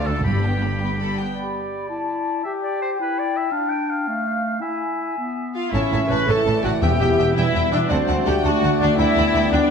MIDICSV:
0, 0, Header, 1, 12, 480
1, 0, Start_track
1, 0, Tempo, 365854
1, 320, Time_signature, 6, 3, 24, 8
1, 7996, Tempo, 361446
1, 12791, End_track
2, 0, Start_track
2, 0, Title_t, "Flute section"
2, 0, Program_c, 0, 73
2, 1769, Note_on_c, 0, 83, 35
2, 2436, Note_off_c, 0, 83, 0
2, 2488, Note_on_c, 0, 81, 41
2, 3200, Note_on_c, 0, 79, 50
2, 3204, Note_off_c, 0, 81, 0
2, 5343, Note_off_c, 0, 79, 0
2, 5347, Note_on_c, 0, 77, 47
2, 6068, Note_off_c, 0, 77, 0
2, 6070, Note_on_c, 0, 80, 39
2, 7166, Note_off_c, 0, 80, 0
2, 7514, Note_on_c, 0, 76, 44
2, 8186, Note_off_c, 0, 76, 0
2, 8251, Note_on_c, 0, 76, 47
2, 8933, Note_off_c, 0, 76, 0
2, 8949, Note_on_c, 0, 76, 51
2, 9661, Note_off_c, 0, 76, 0
2, 10398, Note_on_c, 0, 78, 52
2, 11101, Note_off_c, 0, 78, 0
2, 11831, Note_on_c, 0, 79, 59
2, 12522, Note_off_c, 0, 79, 0
2, 12538, Note_on_c, 0, 79, 57
2, 12791, Note_off_c, 0, 79, 0
2, 12791, End_track
3, 0, Start_track
3, 0, Title_t, "Violin section"
3, 0, Program_c, 1, 48
3, 97, Note_on_c, 1, 69, 31
3, 330, Note_off_c, 1, 69, 0
3, 352, Note_on_c, 1, 62, 31
3, 563, Note_off_c, 1, 62, 0
3, 596, Note_on_c, 1, 67, 30
3, 822, Note_off_c, 1, 67, 0
3, 842, Note_on_c, 1, 62, 28
3, 1066, Note_off_c, 1, 62, 0
3, 1089, Note_on_c, 1, 71, 39
3, 1178, Note_off_c, 1, 71, 0
3, 1316, Note_on_c, 1, 69, 37
3, 1540, Note_off_c, 1, 69, 0
3, 1561, Note_on_c, 1, 67, 31
3, 1652, Note_off_c, 1, 67, 0
3, 7536, Note_on_c, 1, 73, 44
3, 7536, Note_on_c, 1, 81, 48
3, 7628, Note_off_c, 1, 73, 0
3, 7628, Note_off_c, 1, 81, 0
3, 7776, Note_on_c, 1, 73, 42
3, 7779, Note_on_c, 1, 81, 40
3, 7868, Note_off_c, 1, 73, 0
3, 7871, Note_off_c, 1, 81, 0
3, 8008, Note_on_c, 1, 73, 39
3, 8010, Note_on_c, 1, 81, 36
3, 8102, Note_off_c, 1, 73, 0
3, 8104, Note_off_c, 1, 81, 0
3, 8254, Note_on_c, 1, 73, 43
3, 8255, Note_on_c, 1, 81, 42
3, 8347, Note_off_c, 1, 73, 0
3, 8348, Note_off_c, 1, 81, 0
3, 8495, Note_on_c, 1, 81, 40
3, 8500, Note_on_c, 1, 73, 42
3, 8588, Note_off_c, 1, 81, 0
3, 8592, Note_off_c, 1, 73, 0
3, 8725, Note_on_c, 1, 73, 42
3, 8727, Note_on_c, 1, 81, 41
3, 8820, Note_off_c, 1, 73, 0
3, 8822, Note_off_c, 1, 81, 0
3, 8961, Note_on_c, 1, 76, 43
3, 8969, Note_on_c, 1, 79, 44
3, 9058, Note_off_c, 1, 76, 0
3, 9063, Note_off_c, 1, 79, 0
3, 9207, Note_on_c, 1, 76, 42
3, 9208, Note_on_c, 1, 79, 40
3, 9303, Note_off_c, 1, 76, 0
3, 9303, Note_off_c, 1, 79, 0
3, 9452, Note_on_c, 1, 79, 43
3, 9458, Note_on_c, 1, 76, 44
3, 9546, Note_off_c, 1, 79, 0
3, 9551, Note_off_c, 1, 76, 0
3, 9697, Note_on_c, 1, 79, 44
3, 9699, Note_on_c, 1, 76, 39
3, 9791, Note_off_c, 1, 79, 0
3, 9792, Note_off_c, 1, 76, 0
3, 9930, Note_on_c, 1, 79, 47
3, 9935, Note_on_c, 1, 76, 44
3, 10025, Note_off_c, 1, 79, 0
3, 10029, Note_off_c, 1, 76, 0
3, 10158, Note_on_c, 1, 76, 43
3, 10159, Note_on_c, 1, 79, 43
3, 10255, Note_off_c, 1, 76, 0
3, 10256, Note_off_c, 1, 79, 0
3, 10385, Note_on_c, 1, 78, 53
3, 10394, Note_on_c, 1, 81, 51
3, 10485, Note_off_c, 1, 78, 0
3, 10492, Note_off_c, 1, 81, 0
3, 10635, Note_on_c, 1, 78, 45
3, 10635, Note_on_c, 1, 81, 44
3, 10732, Note_off_c, 1, 78, 0
3, 10733, Note_off_c, 1, 81, 0
3, 10876, Note_on_c, 1, 81, 44
3, 10877, Note_on_c, 1, 78, 47
3, 10973, Note_off_c, 1, 81, 0
3, 10974, Note_off_c, 1, 78, 0
3, 11125, Note_on_c, 1, 81, 43
3, 11126, Note_on_c, 1, 78, 44
3, 11220, Note_off_c, 1, 81, 0
3, 11221, Note_off_c, 1, 78, 0
3, 11365, Note_on_c, 1, 81, 53
3, 11368, Note_on_c, 1, 78, 49
3, 11460, Note_off_c, 1, 81, 0
3, 11462, Note_off_c, 1, 78, 0
3, 11623, Note_on_c, 1, 81, 47
3, 11624, Note_on_c, 1, 78, 45
3, 11714, Note_off_c, 1, 81, 0
3, 11715, Note_off_c, 1, 78, 0
3, 11833, Note_on_c, 1, 83, 52
3, 11838, Note_on_c, 1, 79, 57
3, 11930, Note_off_c, 1, 83, 0
3, 11934, Note_off_c, 1, 79, 0
3, 12083, Note_on_c, 1, 83, 46
3, 12084, Note_on_c, 1, 79, 51
3, 12178, Note_off_c, 1, 83, 0
3, 12179, Note_off_c, 1, 79, 0
3, 12326, Note_on_c, 1, 83, 49
3, 12332, Note_on_c, 1, 79, 47
3, 12420, Note_off_c, 1, 83, 0
3, 12425, Note_off_c, 1, 79, 0
3, 12558, Note_on_c, 1, 79, 46
3, 12561, Note_on_c, 1, 83, 53
3, 12653, Note_off_c, 1, 79, 0
3, 12656, Note_off_c, 1, 83, 0
3, 12791, End_track
4, 0, Start_track
4, 0, Title_t, "Violin section"
4, 0, Program_c, 2, 48
4, 83, Note_on_c, 2, 81, 31
4, 323, Note_off_c, 2, 81, 0
4, 325, Note_on_c, 2, 83, 31
4, 548, Note_off_c, 2, 83, 0
4, 572, Note_on_c, 2, 79, 31
4, 810, Note_off_c, 2, 79, 0
4, 815, Note_on_c, 2, 83, 28
4, 1051, Note_on_c, 2, 79, 30
4, 1053, Note_off_c, 2, 83, 0
4, 1291, Note_off_c, 2, 79, 0
4, 1301, Note_on_c, 2, 83, 29
4, 1521, Note_off_c, 2, 83, 0
4, 1536, Note_on_c, 2, 79, 29
4, 1775, Note_off_c, 2, 79, 0
4, 7281, Note_on_c, 2, 77, 44
4, 7502, Note_off_c, 2, 77, 0
4, 7537, Note_on_c, 2, 76, 47
4, 7996, Note_off_c, 2, 76, 0
4, 8030, Note_on_c, 2, 83, 52
4, 8120, Note_off_c, 2, 83, 0
4, 8255, Note_on_c, 2, 81, 50
4, 8719, Note_off_c, 2, 81, 0
4, 8722, Note_on_c, 2, 78, 53
4, 8961, Note_off_c, 2, 78, 0
4, 8971, Note_on_c, 2, 79, 50
4, 9670, Note_on_c, 2, 76, 51
4, 9675, Note_off_c, 2, 79, 0
4, 10148, Note_off_c, 2, 76, 0
4, 10166, Note_on_c, 2, 74, 51
4, 10262, Note_off_c, 2, 74, 0
4, 10387, Note_on_c, 2, 72, 52
4, 10865, Note_off_c, 2, 72, 0
4, 10881, Note_on_c, 2, 79, 62
4, 11118, Note_on_c, 2, 78, 53
4, 11121, Note_off_c, 2, 79, 0
4, 11594, Note_on_c, 2, 74, 64
4, 11598, Note_off_c, 2, 78, 0
4, 11832, Note_off_c, 2, 74, 0
4, 11832, Note_on_c, 2, 76, 62
4, 12538, Note_off_c, 2, 76, 0
4, 12557, Note_on_c, 2, 74, 58
4, 12791, Note_off_c, 2, 74, 0
4, 12791, End_track
5, 0, Start_track
5, 0, Title_t, "Oboe"
5, 0, Program_c, 3, 68
5, 80, Note_on_c, 3, 69, 52
5, 308, Note_off_c, 3, 69, 0
5, 316, Note_on_c, 3, 67, 43
5, 1506, Note_off_c, 3, 67, 0
5, 1769, Note_on_c, 3, 74, 35
5, 3150, Note_off_c, 3, 74, 0
5, 3200, Note_on_c, 3, 76, 46
5, 3308, Note_off_c, 3, 76, 0
5, 3453, Note_on_c, 3, 74, 51
5, 3681, Note_off_c, 3, 74, 0
5, 3702, Note_on_c, 3, 72, 50
5, 3804, Note_off_c, 3, 72, 0
5, 3954, Note_on_c, 3, 71, 52
5, 4183, Note_on_c, 3, 74, 59
5, 4203, Note_off_c, 3, 71, 0
5, 4422, Note_on_c, 3, 76, 55
5, 4441, Note_off_c, 3, 74, 0
5, 4613, Note_on_c, 3, 77, 52
5, 4632, Note_off_c, 3, 76, 0
5, 4844, Note_on_c, 3, 79, 57
5, 4864, Note_off_c, 3, 77, 0
5, 5117, Note_on_c, 3, 77, 52
5, 5137, Note_off_c, 3, 79, 0
5, 6049, Note_off_c, 3, 77, 0
5, 6057, Note_on_c, 3, 76, 35
5, 7247, Note_off_c, 3, 76, 0
5, 7519, Note_on_c, 3, 73, 45
5, 8188, Note_off_c, 3, 73, 0
5, 8229, Note_on_c, 3, 73, 47
5, 8394, Note_off_c, 3, 73, 0
5, 8603, Note_on_c, 3, 74, 42
5, 8955, Note_off_c, 3, 74, 0
5, 8964, Note_on_c, 3, 76, 42
5, 9669, Note_off_c, 3, 76, 0
5, 9677, Note_on_c, 3, 76, 51
5, 10390, Note_on_c, 3, 74, 51
5, 10410, Note_off_c, 3, 76, 0
5, 11115, Note_off_c, 3, 74, 0
5, 11122, Note_on_c, 3, 74, 49
5, 11825, Note_off_c, 3, 74, 0
5, 11852, Note_on_c, 3, 74, 49
5, 12538, Note_off_c, 3, 74, 0
5, 12546, Note_on_c, 3, 74, 59
5, 12791, Note_off_c, 3, 74, 0
5, 12791, End_track
6, 0, Start_track
6, 0, Title_t, "Viola section"
6, 0, Program_c, 4, 48
6, 89, Note_on_c, 4, 62, 30
6, 326, Note_off_c, 4, 62, 0
6, 339, Note_on_c, 4, 55, 29
6, 556, Note_off_c, 4, 55, 0
6, 576, Note_on_c, 4, 59, 30
6, 812, Note_off_c, 4, 59, 0
6, 816, Note_on_c, 4, 55, 28
6, 1053, Note_off_c, 4, 55, 0
6, 1057, Note_on_c, 4, 59, 31
6, 1295, Note_off_c, 4, 59, 0
6, 1295, Note_on_c, 4, 55, 28
6, 1517, Note_off_c, 4, 55, 0
6, 1543, Note_on_c, 4, 59, 25
6, 1778, Note_off_c, 4, 59, 0
6, 7280, Note_on_c, 4, 65, 47
6, 7502, Note_off_c, 4, 65, 0
6, 7515, Note_on_c, 4, 64, 54
6, 7995, Note_off_c, 4, 64, 0
6, 7998, Note_on_c, 4, 71, 68
6, 8234, Note_off_c, 4, 71, 0
6, 8238, Note_on_c, 4, 69, 59
6, 8718, Note_on_c, 4, 66, 56
6, 8720, Note_off_c, 4, 69, 0
6, 8815, Note_off_c, 4, 66, 0
6, 8957, Note_on_c, 4, 67, 59
6, 9668, Note_off_c, 4, 67, 0
6, 9676, Note_on_c, 4, 64, 67
6, 10151, Note_off_c, 4, 64, 0
6, 10152, Note_on_c, 4, 62, 60
6, 10395, Note_on_c, 4, 60, 60
6, 10398, Note_off_c, 4, 62, 0
6, 10868, Note_on_c, 4, 67, 70
6, 10879, Note_off_c, 4, 60, 0
6, 10966, Note_off_c, 4, 67, 0
6, 11114, Note_on_c, 4, 66, 69
6, 11586, Note_off_c, 4, 66, 0
6, 11586, Note_on_c, 4, 62, 61
6, 11816, Note_on_c, 4, 64, 80
6, 11827, Note_off_c, 4, 62, 0
6, 12529, Note_off_c, 4, 64, 0
6, 12553, Note_on_c, 4, 62, 70
6, 12791, Note_off_c, 4, 62, 0
6, 12791, End_track
7, 0, Start_track
7, 0, Title_t, "Clarinet"
7, 0, Program_c, 5, 71
7, 1775, Note_on_c, 5, 67, 37
7, 2440, Note_off_c, 5, 67, 0
7, 2485, Note_on_c, 5, 64, 43
7, 3188, Note_off_c, 5, 64, 0
7, 3218, Note_on_c, 5, 67, 53
7, 3911, Note_off_c, 5, 67, 0
7, 3932, Note_on_c, 5, 64, 58
7, 4606, Note_off_c, 5, 64, 0
7, 4614, Note_on_c, 5, 62, 54
7, 5351, Note_on_c, 5, 57, 57
7, 5371, Note_off_c, 5, 62, 0
7, 6048, Note_on_c, 5, 64, 44
7, 6067, Note_off_c, 5, 57, 0
7, 6784, Note_off_c, 5, 64, 0
7, 6797, Note_on_c, 5, 59, 40
7, 7499, Note_off_c, 5, 59, 0
7, 7507, Note_on_c, 5, 61, 53
7, 8237, Note_on_c, 5, 57, 56
7, 8257, Note_off_c, 5, 61, 0
7, 8948, Note_off_c, 5, 57, 0
7, 8956, Note_on_c, 5, 59, 54
7, 9646, Note_off_c, 5, 59, 0
7, 9654, Note_on_c, 5, 55, 58
7, 11078, Note_off_c, 5, 55, 0
7, 11113, Note_on_c, 5, 57, 65
7, 12551, Note_on_c, 5, 59, 66
7, 12571, Note_off_c, 5, 57, 0
7, 12791, Note_off_c, 5, 59, 0
7, 12791, End_track
8, 0, Start_track
8, 0, Title_t, "French horn section"
8, 0, Program_c, 6, 60
8, 7526, Note_on_c, 6, 64, 53
8, 7529, Note_on_c, 6, 57, 48
8, 8913, Note_off_c, 6, 57, 0
8, 8985, Note_on_c, 6, 59, 53
8, 10356, Note_off_c, 6, 64, 0
8, 10401, Note_on_c, 6, 57, 56
8, 10405, Note_on_c, 6, 62, 59
8, 10416, Note_off_c, 6, 59, 0
8, 11809, Note_off_c, 6, 57, 0
8, 11829, Note_on_c, 6, 59, 63
8, 12791, Note_off_c, 6, 59, 0
8, 12791, Note_off_c, 6, 62, 0
8, 12791, End_track
9, 0, Start_track
9, 0, Title_t, "Trombone section"
9, 0, Program_c, 7, 61
9, 7512, Note_on_c, 7, 49, 44
9, 7518, Note_on_c, 7, 52, 54
9, 8905, Note_off_c, 7, 49, 0
9, 8960, Note_on_c, 7, 47, 49
9, 10352, Note_off_c, 7, 52, 0
9, 10382, Note_on_c, 7, 66, 53
9, 10387, Note_on_c, 7, 50, 57
9, 10404, Note_off_c, 7, 47, 0
9, 11799, Note_off_c, 7, 66, 0
9, 11832, Note_on_c, 7, 55, 58
9, 12791, Note_off_c, 7, 50, 0
9, 12791, Note_off_c, 7, 55, 0
9, 12791, End_track
10, 0, Start_track
10, 0, Title_t, "Timpani"
10, 0, Program_c, 8, 47
10, 329, Note_on_c, 8, 43, 51
10, 1001, Note_off_c, 8, 43, 0
10, 8956, Note_on_c, 8, 40, 61
10, 9631, Note_off_c, 8, 40, 0
10, 12791, End_track
11, 0, Start_track
11, 0, Title_t, "Cello section"
11, 0, Program_c, 10, 48
11, 0, Note_on_c, 10, 38, 52
11, 297, Note_off_c, 10, 38, 0
11, 335, Note_on_c, 10, 43, 43
11, 1539, Note_off_c, 10, 43, 0
11, 7524, Note_on_c, 10, 45, 55
11, 7619, Note_off_c, 10, 45, 0
11, 7762, Note_on_c, 10, 45, 49
11, 7856, Note_off_c, 10, 45, 0
11, 8008, Note_on_c, 10, 45, 48
11, 8102, Note_off_c, 10, 45, 0
11, 8248, Note_on_c, 10, 45, 50
11, 8343, Note_off_c, 10, 45, 0
11, 8491, Note_on_c, 10, 45, 47
11, 8585, Note_off_c, 10, 45, 0
11, 8729, Note_on_c, 10, 45, 50
11, 8823, Note_off_c, 10, 45, 0
11, 8960, Note_on_c, 10, 40, 58
11, 9057, Note_off_c, 10, 40, 0
11, 9208, Note_on_c, 10, 40, 47
11, 9303, Note_off_c, 10, 40, 0
11, 9447, Note_on_c, 10, 40, 51
11, 9542, Note_off_c, 10, 40, 0
11, 9691, Note_on_c, 10, 40, 50
11, 9786, Note_off_c, 10, 40, 0
11, 9931, Note_on_c, 10, 40, 50
11, 10026, Note_off_c, 10, 40, 0
11, 10167, Note_on_c, 10, 40, 53
11, 10262, Note_off_c, 10, 40, 0
11, 10405, Note_on_c, 10, 38, 60
11, 10501, Note_off_c, 10, 38, 0
11, 10652, Note_on_c, 10, 38, 47
11, 10746, Note_off_c, 10, 38, 0
11, 10888, Note_on_c, 10, 38, 53
11, 10983, Note_off_c, 10, 38, 0
11, 11124, Note_on_c, 10, 38, 55
11, 11219, Note_off_c, 10, 38, 0
11, 11362, Note_on_c, 10, 38, 53
11, 11458, Note_off_c, 10, 38, 0
11, 11604, Note_on_c, 10, 38, 54
11, 11699, Note_off_c, 10, 38, 0
11, 11842, Note_on_c, 10, 38, 64
11, 11937, Note_off_c, 10, 38, 0
11, 12079, Note_on_c, 10, 38, 53
11, 12174, Note_off_c, 10, 38, 0
11, 12315, Note_on_c, 10, 38, 54
11, 12411, Note_off_c, 10, 38, 0
11, 12551, Note_on_c, 10, 38, 59
11, 12647, Note_off_c, 10, 38, 0
11, 12791, End_track
12, 0, Start_track
12, 0, Title_t, "Double bass section"
12, 0, Program_c, 11, 48
12, 0, Note_on_c, 11, 38, 57
12, 290, Note_off_c, 11, 38, 0
12, 327, Note_on_c, 11, 31, 44
12, 1535, Note_off_c, 11, 31, 0
12, 7524, Note_on_c, 11, 33, 52
12, 7618, Note_off_c, 11, 33, 0
12, 7766, Note_on_c, 11, 33, 43
12, 7860, Note_off_c, 11, 33, 0
12, 7999, Note_on_c, 11, 33, 45
12, 8095, Note_off_c, 11, 33, 0
12, 8236, Note_on_c, 11, 33, 46
12, 8333, Note_off_c, 11, 33, 0
12, 8479, Note_on_c, 11, 33, 48
12, 8575, Note_off_c, 11, 33, 0
12, 8719, Note_on_c, 11, 33, 46
12, 8815, Note_off_c, 11, 33, 0
12, 8965, Note_on_c, 11, 28, 54
12, 9060, Note_off_c, 11, 28, 0
12, 9201, Note_on_c, 11, 28, 48
12, 9297, Note_off_c, 11, 28, 0
12, 9440, Note_on_c, 11, 28, 44
12, 9537, Note_off_c, 11, 28, 0
12, 9677, Note_on_c, 11, 28, 51
12, 9774, Note_off_c, 11, 28, 0
12, 9918, Note_on_c, 11, 28, 50
12, 10015, Note_off_c, 11, 28, 0
12, 10155, Note_on_c, 11, 28, 47
12, 10252, Note_off_c, 11, 28, 0
12, 10405, Note_on_c, 11, 38, 60
12, 10501, Note_off_c, 11, 38, 0
12, 10639, Note_on_c, 11, 38, 48
12, 10736, Note_off_c, 11, 38, 0
12, 10881, Note_on_c, 11, 38, 49
12, 10977, Note_off_c, 11, 38, 0
12, 11115, Note_on_c, 11, 38, 53
12, 11212, Note_off_c, 11, 38, 0
12, 11359, Note_on_c, 11, 38, 59
12, 11455, Note_off_c, 11, 38, 0
12, 11598, Note_on_c, 11, 38, 56
12, 11694, Note_off_c, 11, 38, 0
12, 11834, Note_on_c, 11, 38, 59
12, 11930, Note_off_c, 11, 38, 0
12, 12085, Note_on_c, 11, 38, 49
12, 12179, Note_off_c, 11, 38, 0
12, 12322, Note_on_c, 11, 38, 51
12, 12416, Note_off_c, 11, 38, 0
12, 12554, Note_on_c, 11, 38, 54
12, 12650, Note_off_c, 11, 38, 0
12, 12791, End_track
0, 0, End_of_file